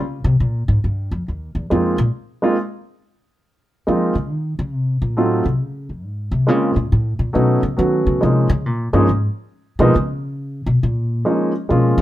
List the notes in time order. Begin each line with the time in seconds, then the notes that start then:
Already playing: C#3
0.24 C3
0.40 A#2
0.68 G#2
0.84 G2
1.11 F2
1.28 D#2
1.55 E2
1.70 F2 G#3 A#3 C4 D#4 F4
1.98 A#2
2.42 G#3 A#3 C4 D#4 F4
3.87 F3 G#3 A#3 C4 D#4 F4
4.15 C#3
4.31 D#3
4.59 C#3
4.74 C3
5.02 A#2
5.17 A2 F#3 A3 C4 D#4 F4
5.45 C3
5.62 C#3
5.89 F2
6.04 G#2
6.31 C3
6.47 C#3 G#3 A#3 C4 C#4 F4
6.76 A#2
6.92 A2
7.19 A#2
7.33 B2 F#3 A3 B3 C#4 D#4
7.63 C#3
7.77 D#3 F#3 A3 B3 C#4 F#4
8.07 C#3
8.21 C3 F3 G#3 A#3 C#4 D#4
8.49 C#3
8.66 A#2
8.93 G2 F3 G#3 A#3 C#4 D#4
9.09 G#2
9.79 B2 F3 G#3 A#3 B3 D#4
9.95 C#3
10.66 B2
10.83 A#2
11.25 F3 G#3 A#3 C#4 D#4
11.69 B2 F3 G#3 A#3 C#4 F4
11.98 C#3